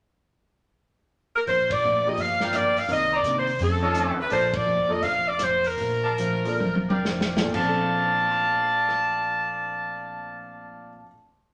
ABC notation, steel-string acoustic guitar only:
X:1
M:4/4
L:1/8
Q:"Swing" 1/4=164
K:Bb
V:1 name="Steel-string acoustic guitar" clef=bass
z8 | [B,,F,A,D] z [B,,F,A,D] z [G,,F,B,D] z [G,,F,B,D] z | [C,E,B,D] z [C,E,B,D] z [F,,E,A,^C] z [F,,E,A,C] z | [B,,F,A,D] z [B,,F,A,D] z [B,,F,A,D] z [B,,F,A,D] z |
[B,,F,A,D] z [B,,F,A,D] z [B,,F,A,D] z [B,,F,A,D] z | [B,,F,A,D]8- | [B,,F,A,D]8 |]